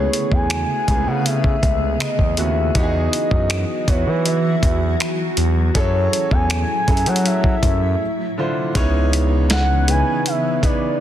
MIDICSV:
0, 0, Header, 1, 6, 480
1, 0, Start_track
1, 0, Key_signature, 4, "minor"
1, 0, Tempo, 750000
1, 1762, Time_signature, 4, 2, 24, 8
1, 7041, End_track
2, 0, Start_track
2, 0, Title_t, "Soft synth lead"
2, 0, Program_c, 0, 80
2, 0, Note_on_c, 0, 73, 99
2, 207, Note_on_c, 0, 80, 115
2, 217, Note_off_c, 0, 73, 0
2, 684, Note_on_c, 0, 78, 100
2, 693, Note_off_c, 0, 80, 0
2, 802, Note_on_c, 0, 76, 104
2, 812, Note_off_c, 0, 78, 0
2, 1280, Note_on_c, 0, 75, 95
2, 1290, Note_off_c, 0, 76, 0
2, 1523, Note_on_c, 0, 76, 100
2, 1532, Note_off_c, 0, 75, 0
2, 1765, Note_on_c, 0, 75, 101
2, 1775, Note_off_c, 0, 76, 0
2, 2485, Note_on_c, 0, 73, 88
2, 2494, Note_off_c, 0, 75, 0
2, 2721, Note_off_c, 0, 73, 0
2, 2725, Note_on_c, 0, 76, 80
2, 3418, Note_off_c, 0, 76, 0
2, 3683, Note_on_c, 0, 73, 101
2, 4044, Note_on_c, 0, 80, 114
2, 4053, Note_off_c, 0, 73, 0
2, 4526, Note_on_c, 0, 78, 98
2, 4535, Note_off_c, 0, 80, 0
2, 4649, Note_on_c, 0, 76, 84
2, 4658, Note_off_c, 0, 78, 0
2, 5365, Note_off_c, 0, 76, 0
2, 6090, Note_on_c, 0, 78, 105
2, 6333, Note_on_c, 0, 80, 112
2, 6343, Note_off_c, 0, 78, 0
2, 6574, Note_on_c, 0, 76, 97
2, 6584, Note_off_c, 0, 80, 0
2, 6814, Note_on_c, 0, 74, 83
2, 6823, Note_off_c, 0, 76, 0
2, 7041, Note_off_c, 0, 74, 0
2, 7041, End_track
3, 0, Start_track
3, 0, Title_t, "Grand piano"
3, 0, Program_c, 1, 0
3, 0, Control_c, 1, 64, 127
3, 0, Note_on_c, 1, 49, 91
3, 0, Note_on_c, 1, 57, 86
3, 0, Note_on_c, 1, 59, 84
3, 0, Note_on_c, 1, 64, 84
3, 0, Note_on_c, 1, 68, 100
3, 442, Note_off_c, 1, 49, 0
3, 443, Note_off_c, 1, 57, 0
3, 445, Note_off_c, 1, 59, 0
3, 446, Note_off_c, 1, 64, 0
3, 448, Note_off_c, 1, 68, 0
3, 560, Note_on_c, 1, 48, 59
3, 563, Note_on_c, 1, 57, 67
3, 566, Note_on_c, 1, 59, 71
3, 570, Note_on_c, 1, 64, 70
3, 572, Note_on_c, 1, 68, 82
3, 602, Note_on_c, 1, 49, 72
3, 603, Note_off_c, 1, 48, 0
3, 1364, Note_off_c, 1, 57, 0
3, 1366, Note_off_c, 1, 59, 0
3, 1368, Note_off_c, 1, 64, 0
3, 1369, Note_off_c, 1, 68, 0
3, 1384, Note_off_c, 1, 49, 0
3, 1518, Note_on_c, 1, 49, 67
3, 1522, Note_on_c, 1, 57, 62
3, 1524, Note_on_c, 1, 59, 64
3, 1528, Note_on_c, 1, 64, 62
3, 1530, Note_on_c, 1, 66, 75
3, 1720, Note_off_c, 1, 49, 0
3, 1722, Note_off_c, 1, 57, 0
3, 1723, Note_off_c, 1, 59, 0
3, 1725, Note_off_c, 1, 64, 0
3, 1726, Note_off_c, 1, 66, 0
3, 1759, Note_on_c, 1, 52, 93
3, 1762, Note_on_c, 1, 59, 84
3, 1765, Note_on_c, 1, 63, 87
3, 1767, Note_on_c, 1, 66, 89
3, 1771, Control_c, 1, 64, 0
3, 1771, Note_on_c, 1, 67, 85
3, 1808, Note_off_c, 1, 67, 0
3, 1812, Note_on_c, 1, 68, 104
3, 1864, Control_c, 1, 64, 127
3, 2362, Note_off_c, 1, 52, 0
3, 2363, Note_off_c, 1, 59, 0
3, 2364, Note_off_c, 1, 63, 0
3, 2366, Note_off_c, 1, 66, 0
3, 2388, Note_off_c, 1, 68, 0
3, 2479, Note_on_c, 1, 52, 74
3, 2481, Note_on_c, 1, 59, 69
3, 2484, Note_on_c, 1, 64, 66
3, 2487, Note_on_c, 1, 66, 68
3, 2490, Note_on_c, 1, 71, 81
3, 3282, Note_off_c, 1, 52, 0
3, 3283, Note_off_c, 1, 59, 0
3, 3285, Note_off_c, 1, 64, 0
3, 3286, Note_off_c, 1, 66, 0
3, 3288, Note_off_c, 1, 71, 0
3, 3676, Note_on_c, 1, 54, 93
3, 3679, Note_on_c, 1, 61, 89
3, 3682, Note_on_c, 1, 64, 86
3, 3685, Note_on_c, 1, 68, 83
3, 3688, Note_on_c, 1, 69, 110
3, 3690, Control_c, 1, 64, 0
3, 3820, Control_c, 1, 64, 127
3, 4280, Note_off_c, 1, 54, 0
3, 4282, Note_off_c, 1, 61, 0
3, 4283, Note_off_c, 1, 64, 0
3, 4285, Note_off_c, 1, 68, 0
3, 4286, Note_off_c, 1, 69, 0
3, 4395, Note_on_c, 1, 54, 75
3, 4399, Note_on_c, 1, 61, 70
3, 4402, Note_on_c, 1, 64, 69
3, 4404, Note_on_c, 1, 68, 67
3, 4408, Note_on_c, 1, 69, 83
3, 5119, Note_off_c, 1, 54, 0
3, 5120, Note_off_c, 1, 61, 0
3, 5122, Note_off_c, 1, 64, 0
3, 5123, Note_off_c, 1, 68, 0
3, 5125, Note_off_c, 1, 69, 0
3, 5130, Control_c, 1, 64, 0
3, 5230, Control_c, 1, 64, 127
3, 5360, Note_on_c, 1, 50, 83
3, 5362, Note_on_c, 1, 62, 74
3, 5366, Note_on_c, 1, 64, 79
3, 5369, Note_on_c, 1, 65, 78
3, 5372, Note_on_c, 1, 72, 93
3, 5561, Note_off_c, 1, 50, 0
3, 5562, Note_off_c, 1, 62, 0
3, 5564, Note_off_c, 1, 64, 0
3, 5566, Note_off_c, 1, 65, 0
3, 5567, Note_off_c, 1, 72, 0
3, 5599, Note_on_c, 1, 49, 111
3, 5604, Note_on_c, 1, 59, 109
3, 5606, Note_on_c, 1, 63, 105
3, 5610, Control_c, 1, 64, 0
3, 5610, Note_on_c, 1, 64, 107
3, 5611, Note_on_c, 1, 73, 121
3, 5728, Control_c, 1, 64, 127
3, 6202, Note_off_c, 1, 49, 0
3, 6204, Note_off_c, 1, 59, 0
3, 6205, Note_off_c, 1, 63, 0
3, 6207, Note_off_c, 1, 64, 0
3, 6208, Note_off_c, 1, 73, 0
3, 6318, Note_on_c, 1, 49, 77
3, 6321, Note_on_c, 1, 59, 68
3, 6325, Note_on_c, 1, 63, 73
3, 6328, Note_on_c, 1, 64, 69
3, 6330, Note_on_c, 1, 71, 85
3, 6721, Note_off_c, 1, 49, 0
3, 6722, Note_off_c, 1, 59, 0
3, 6724, Note_off_c, 1, 63, 0
3, 6726, Note_off_c, 1, 64, 0
3, 6727, Note_off_c, 1, 71, 0
3, 6799, Note_on_c, 1, 49, 77
3, 6802, Note_on_c, 1, 59, 72
3, 6806, Note_on_c, 1, 63, 75
3, 6808, Note_on_c, 1, 64, 67
3, 6811, Note_on_c, 1, 71, 85
3, 7040, Note_off_c, 1, 49, 0
3, 7041, Note_off_c, 1, 59, 0
3, 7041, Note_off_c, 1, 63, 0
3, 7041, Note_off_c, 1, 64, 0
3, 7041, Note_off_c, 1, 71, 0
3, 7041, End_track
4, 0, Start_track
4, 0, Title_t, "Ambient pad"
4, 0, Program_c, 2, 92
4, 0, Note_on_c, 2, 49, 82
4, 0, Note_on_c, 2, 59, 73
4, 0, Note_on_c, 2, 68, 87
4, 1742, Note_off_c, 2, 49, 0
4, 1742, Note_off_c, 2, 59, 0
4, 1742, Note_off_c, 2, 68, 0
4, 1760, Note_on_c, 2, 52, 79
4, 1760, Note_on_c, 2, 54, 70
4, 1760, Note_on_c, 2, 66, 92
4, 3662, Note_off_c, 2, 52, 0
4, 3662, Note_off_c, 2, 66, 0
4, 3680, Note_on_c, 2, 45, 81
4, 3680, Note_on_c, 2, 64, 89
4, 5095, Note_off_c, 2, 54, 0
4, 5106, Note_off_c, 2, 45, 0
4, 5106, Note_off_c, 2, 64, 0
4, 5601, Note_on_c, 2, 52, 90
4, 5602, Note_on_c, 2, 49, 79
4, 5602, Note_on_c, 2, 59, 75
4, 7027, Note_off_c, 2, 49, 0
4, 7027, Note_off_c, 2, 52, 0
4, 7028, Note_off_c, 2, 59, 0
4, 7041, End_track
5, 0, Start_track
5, 0, Title_t, "Analog synth bass"
5, 0, Program_c, 3, 38
5, 201, Note_on_c, 3, 40, 88
5, 412, Note_off_c, 3, 40, 0
5, 563, Note_on_c, 3, 37, 89
5, 668, Note_off_c, 3, 37, 0
5, 682, Note_on_c, 3, 49, 91
5, 998, Note_off_c, 3, 49, 0
5, 1043, Note_on_c, 3, 37, 91
5, 1253, Note_off_c, 3, 37, 0
5, 1401, Note_on_c, 3, 40, 89
5, 1506, Note_off_c, 3, 40, 0
5, 1522, Note_on_c, 3, 39, 94
5, 1732, Note_off_c, 3, 39, 0
5, 1761, Note_on_c, 3, 40, 107
5, 1972, Note_off_c, 3, 40, 0
5, 2120, Note_on_c, 3, 42, 92
5, 2331, Note_off_c, 3, 42, 0
5, 2481, Note_on_c, 3, 40, 92
5, 2587, Note_off_c, 3, 40, 0
5, 2599, Note_on_c, 3, 52, 87
5, 2916, Note_off_c, 3, 52, 0
5, 2962, Note_on_c, 3, 40, 99
5, 3172, Note_off_c, 3, 40, 0
5, 3439, Note_on_c, 3, 40, 92
5, 3650, Note_off_c, 3, 40, 0
5, 3680, Note_on_c, 3, 42, 103
5, 3891, Note_off_c, 3, 42, 0
5, 4040, Note_on_c, 3, 40, 94
5, 4251, Note_off_c, 3, 40, 0
5, 4402, Note_on_c, 3, 42, 86
5, 4507, Note_off_c, 3, 42, 0
5, 4519, Note_on_c, 3, 54, 96
5, 4836, Note_off_c, 3, 54, 0
5, 4880, Note_on_c, 3, 42, 99
5, 5091, Note_off_c, 3, 42, 0
5, 5602, Note_on_c, 3, 37, 97
5, 6416, Note_off_c, 3, 37, 0
5, 7041, End_track
6, 0, Start_track
6, 0, Title_t, "Drums"
6, 86, Note_on_c, 9, 42, 68
6, 150, Note_off_c, 9, 42, 0
6, 202, Note_on_c, 9, 36, 96
6, 266, Note_off_c, 9, 36, 0
6, 320, Note_on_c, 9, 42, 69
6, 325, Note_on_c, 9, 26, 114
6, 384, Note_off_c, 9, 42, 0
6, 389, Note_off_c, 9, 26, 0
6, 563, Note_on_c, 9, 36, 100
6, 564, Note_on_c, 9, 42, 65
6, 627, Note_off_c, 9, 36, 0
6, 628, Note_off_c, 9, 42, 0
6, 805, Note_on_c, 9, 42, 74
6, 869, Note_off_c, 9, 42, 0
6, 922, Note_on_c, 9, 36, 88
6, 986, Note_off_c, 9, 36, 0
6, 1042, Note_on_c, 9, 36, 98
6, 1044, Note_on_c, 9, 42, 56
6, 1106, Note_off_c, 9, 36, 0
6, 1108, Note_off_c, 9, 42, 0
6, 1282, Note_on_c, 9, 42, 71
6, 1285, Note_on_c, 9, 26, 121
6, 1346, Note_off_c, 9, 42, 0
6, 1349, Note_off_c, 9, 26, 0
6, 1401, Note_on_c, 9, 36, 82
6, 1465, Note_off_c, 9, 36, 0
6, 1518, Note_on_c, 9, 42, 64
6, 1582, Note_off_c, 9, 42, 0
6, 1760, Note_on_c, 9, 42, 68
6, 1761, Note_on_c, 9, 36, 125
6, 1824, Note_off_c, 9, 42, 0
6, 1825, Note_off_c, 9, 36, 0
6, 2004, Note_on_c, 9, 42, 72
6, 2068, Note_off_c, 9, 42, 0
6, 2120, Note_on_c, 9, 36, 95
6, 2184, Note_off_c, 9, 36, 0
6, 2239, Note_on_c, 9, 42, 75
6, 2244, Note_on_c, 9, 26, 115
6, 2303, Note_off_c, 9, 42, 0
6, 2308, Note_off_c, 9, 26, 0
6, 2482, Note_on_c, 9, 36, 106
6, 2483, Note_on_c, 9, 42, 68
6, 2546, Note_off_c, 9, 36, 0
6, 2547, Note_off_c, 9, 42, 0
6, 2723, Note_on_c, 9, 42, 72
6, 2787, Note_off_c, 9, 42, 0
6, 2961, Note_on_c, 9, 36, 97
6, 2963, Note_on_c, 9, 42, 56
6, 3025, Note_off_c, 9, 36, 0
6, 3027, Note_off_c, 9, 42, 0
6, 3202, Note_on_c, 9, 42, 73
6, 3205, Note_on_c, 9, 26, 120
6, 3266, Note_off_c, 9, 42, 0
6, 3269, Note_off_c, 9, 26, 0
6, 3437, Note_on_c, 9, 42, 63
6, 3501, Note_off_c, 9, 42, 0
6, 3680, Note_on_c, 9, 36, 122
6, 3680, Note_on_c, 9, 42, 69
6, 3744, Note_off_c, 9, 36, 0
6, 3744, Note_off_c, 9, 42, 0
6, 3925, Note_on_c, 9, 42, 73
6, 3989, Note_off_c, 9, 42, 0
6, 4040, Note_on_c, 9, 36, 94
6, 4104, Note_off_c, 9, 36, 0
6, 4160, Note_on_c, 9, 42, 78
6, 4164, Note_on_c, 9, 26, 111
6, 4224, Note_off_c, 9, 42, 0
6, 4228, Note_off_c, 9, 26, 0
6, 4402, Note_on_c, 9, 36, 103
6, 4402, Note_on_c, 9, 42, 43
6, 4461, Note_off_c, 9, 42, 0
6, 4461, Note_on_c, 9, 42, 50
6, 4466, Note_off_c, 9, 36, 0
6, 4520, Note_off_c, 9, 42, 0
6, 4520, Note_on_c, 9, 42, 60
6, 4582, Note_off_c, 9, 42, 0
6, 4582, Note_on_c, 9, 42, 69
6, 4643, Note_off_c, 9, 42, 0
6, 4643, Note_on_c, 9, 42, 71
6, 4707, Note_off_c, 9, 42, 0
6, 4761, Note_on_c, 9, 36, 89
6, 4825, Note_off_c, 9, 36, 0
6, 4881, Note_on_c, 9, 36, 97
6, 4882, Note_on_c, 9, 42, 59
6, 4945, Note_off_c, 9, 36, 0
6, 4946, Note_off_c, 9, 42, 0
6, 5601, Note_on_c, 9, 36, 122
6, 5601, Note_on_c, 9, 42, 69
6, 5665, Note_off_c, 9, 36, 0
6, 5665, Note_off_c, 9, 42, 0
6, 5845, Note_on_c, 9, 42, 78
6, 5909, Note_off_c, 9, 42, 0
6, 6079, Note_on_c, 9, 42, 78
6, 6084, Note_on_c, 9, 38, 110
6, 6143, Note_off_c, 9, 42, 0
6, 6148, Note_off_c, 9, 38, 0
6, 6324, Note_on_c, 9, 42, 67
6, 6388, Note_off_c, 9, 42, 0
6, 6565, Note_on_c, 9, 42, 79
6, 6629, Note_off_c, 9, 42, 0
6, 6803, Note_on_c, 9, 36, 104
6, 6805, Note_on_c, 9, 42, 60
6, 6867, Note_off_c, 9, 36, 0
6, 6869, Note_off_c, 9, 42, 0
6, 7041, End_track
0, 0, End_of_file